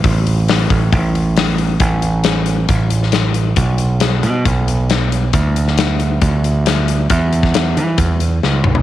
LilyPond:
<<
  \new Staff \with { instrumentName = "Picked electric bass" } { \clef bass \time 4/4 \key e \mixolydian \tempo 4 = 136 a,,4. a,,8 a,,2 | a,,2 a,,2 | b,,4. b,8 b,,2 | d,2 d,2 |
e,4. e8 e,4 cis,8 b,,8 | }
  \new DrumStaff \with { instrumentName = "Drums" } \drummode { \time 4/4 <hho bd>8 hho8 <hho sn>8 <hho bd>8 <hho bd>8 hho8 <hho sn>8 hho8 | <hh bd>8 hh8 <hh sn>8 hh8 <hh bd>8 hh16 sn16 <hh sn>8 hh8 | <hh bd>8 hh8 <hh sn>8 hh8 <hh bd>8 hh8 <hh sn>8 hh8 | <hh bd>8 hh16 sn16 <hh sn>8 hh8 <hh bd>8 hh8 <hh sn>8 hh8 |
<hh bd>8 hh16 <bd sn>16 <hh sn>8 hh8 <hh bd>8 hh8 sn8 toml16 tomfh16 | }
>>